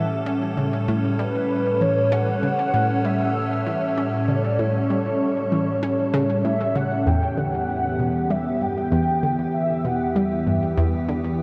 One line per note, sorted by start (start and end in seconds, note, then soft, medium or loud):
0.00 7.03 A2 medium
0.00 0.21 E3 medium
0.00 7.03 G3 medium
0.00 7.03 C#4 medium
0.00 7.03 A4 medium
0.00 0.57 E5 medium
0.26 0.52 C#4 medium
0.57 0.74 C#3 medium
0.88 1.05 A2 loud
1.19 1.36 G3 medium
1.19 1.83 B4 loud
1.81 2.06 E3 medium
1.81 2.13 C#5 loud
2.12 2.37 C#4 medium
2.12 3.06 F#5 loud
2.43 2.60 C#3 medium
2.74 2.91 A2 loud
3.05 3.21 G3 medium
3.05 4.30 E5 loud
3.67 3.92 E3 medium
3.98 4.23 C#4 medium
4.28 4.45 C#3 medium
4.28 4.37 D5 medium
4.35 4.44 C#5 medium
4.42 4.61 D5 medium
4.59 4.76 A2 loud
4.59 6.44 C#5 loud
4.90 5.07 G3 medium
5.52 5.77 E3 medium
5.83 6.08 C#4 medium
6.14 6.39 C#3 loud
6.45 6.62 A2 medium
6.45 6.77 E5 loud
6.76 6.92 C#3 medium
6.76 7.08 F#5 loud
7.06 11.43 E2 medium
7.06 7.23 E2 loud
7.06 11.43 E3 medium
7.06 11.43 B3 medium
7.06 11.43 G4 medium
7.06 7.39 G5 loud
7.37 7.54 D3 medium
7.37 8.32 F#5 loud
7.99 8.25 B2 medium
8.30 8.56 G3 medium
8.30 8.63 E5 loud
8.61 8.78 G2 medium
8.61 9.54 G5 loud
8.92 9.09 E2 loud
9.23 9.40 D3 medium
9.54 9.87 E5 medium
9.85 10.10 B2 medium
9.85 10.18 F#5 loud
10.16 10.41 G3 medium
10.16 11.40 E5 medium
10.47 10.64 G2 medium
10.78 10.94 E2 loud
11.09 11.25 D3 medium